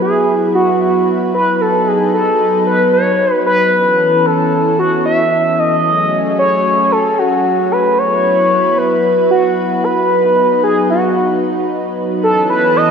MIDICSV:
0, 0, Header, 1, 3, 480
1, 0, Start_track
1, 0, Tempo, 530973
1, 1456, Time_signature, 4, 2, 24, 8
1, 11670, End_track
2, 0, Start_track
2, 0, Title_t, "Analog synth lead"
2, 0, Program_c, 0, 81
2, 17, Note_on_c, 0, 68, 95
2, 463, Note_off_c, 0, 68, 0
2, 496, Note_on_c, 0, 66, 91
2, 719, Note_off_c, 0, 66, 0
2, 736, Note_on_c, 0, 66, 97
2, 1183, Note_off_c, 0, 66, 0
2, 1217, Note_on_c, 0, 71, 98
2, 1456, Note_on_c, 0, 69, 102
2, 1469, Note_off_c, 0, 71, 0
2, 1695, Note_on_c, 0, 68, 91
2, 1708, Note_off_c, 0, 69, 0
2, 1929, Note_off_c, 0, 68, 0
2, 1934, Note_on_c, 0, 69, 97
2, 2381, Note_off_c, 0, 69, 0
2, 2412, Note_on_c, 0, 71, 104
2, 2637, Note_off_c, 0, 71, 0
2, 2652, Note_on_c, 0, 73, 112
2, 3100, Note_off_c, 0, 73, 0
2, 3132, Note_on_c, 0, 71, 111
2, 3852, Note_on_c, 0, 69, 102
2, 3866, Note_off_c, 0, 71, 0
2, 4327, Note_off_c, 0, 69, 0
2, 4332, Note_on_c, 0, 66, 101
2, 4557, Note_off_c, 0, 66, 0
2, 4571, Note_on_c, 0, 76, 114
2, 5053, Note_on_c, 0, 75, 121
2, 5066, Note_off_c, 0, 76, 0
2, 5767, Note_off_c, 0, 75, 0
2, 5773, Note_on_c, 0, 73, 108
2, 6253, Note_on_c, 0, 69, 106
2, 6267, Note_off_c, 0, 73, 0
2, 6494, Note_on_c, 0, 66, 103
2, 6508, Note_off_c, 0, 69, 0
2, 6976, Note_on_c, 0, 71, 100
2, 6990, Note_off_c, 0, 66, 0
2, 7216, Note_on_c, 0, 73, 112
2, 7230, Note_off_c, 0, 71, 0
2, 7935, Note_on_c, 0, 71, 105
2, 7948, Note_off_c, 0, 73, 0
2, 8410, Note_off_c, 0, 71, 0
2, 8415, Note_on_c, 0, 66, 97
2, 8894, Note_on_c, 0, 71, 105
2, 8908, Note_off_c, 0, 66, 0
2, 9609, Note_off_c, 0, 71, 0
2, 9615, Note_on_c, 0, 68, 90
2, 9839, Note_off_c, 0, 68, 0
2, 9856, Note_on_c, 0, 66, 88
2, 10540, Note_off_c, 0, 66, 0
2, 11060, Note_on_c, 0, 69, 104
2, 11282, Note_off_c, 0, 69, 0
2, 11299, Note_on_c, 0, 71, 102
2, 11540, Note_on_c, 0, 75, 116
2, 11553, Note_off_c, 0, 71, 0
2, 11670, Note_off_c, 0, 75, 0
2, 11670, End_track
3, 0, Start_track
3, 0, Title_t, "Analog synth pad"
3, 0, Program_c, 1, 89
3, 0, Note_on_c, 1, 54, 76
3, 0, Note_on_c, 1, 59, 67
3, 0, Note_on_c, 1, 64, 67
3, 0, Note_on_c, 1, 71, 83
3, 1436, Note_off_c, 1, 64, 0
3, 1455, Note_on_c, 1, 63, 66
3, 3340, Note_off_c, 1, 71, 0
3, 3341, Note_off_c, 1, 54, 0
3, 3357, Note_off_c, 1, 63, 0
3, 3375, Note_on_c, 1, 52, 75
3, 3376, Note_on_c, 1, 61, 66
3, 3376, Note_on_c, 1, 69, 81
3, 5259, Note_off_c, 1, 59, 0
3, 5277, Note_off_c, 1, 52, 0
3, 5277, Note_off_c, 1, 61, 0
3, 5277, Note_off_c, 1, 69, 0
3, 5293, Note_on_c, 1, 54, 74
3, 5293, Note_on_c, 1, 61, 68
3, 5293, Note_on_c, 1, 68, 81
3, 5294, Note_on_c, 1, 57, 66
3, 7195, Note_off_c, 1, 68, 0
3, 7196, Note_off_c, 1, 57, 0
3, 7196, Note_off_c, 1, 61, 0
3, 7217, Note_on_c, 1, 59, 68
3, 7217, Note_on_c, 1, 71, 82
3, 7218, Note_on_c, 1, 64, 67
3, 9118, Note_off_c, 1, 64, 0
3, 9137, Note_on_c, 1, 63, 66
3, 11018, Note_off_c, 1, 54, 0
3, 11021, Note_off_c, 1, 59, 0
3, 11021, Note_off_c, 1, 71, 0
3, 11037, Note_off_c, 1, 63, 0
3, 11053, Note_on_c, 1, 52, 76
3, 11053, Note_on_c, 1, 59, 70
3, 11053, Note_on_c, 1, 69, 82
3, 11054, Note_on_c, 1, 61, 70
3, 11670, Note_off_c, 1, 52, 0
3, 11670, Note_off_c, 1, 59, 0
3, 11670, Note_off_c, 1, 61, 0
3, 11670, Note_off_c, 1, 69, 0
3, 11670, End_track
0, 0, End_of_file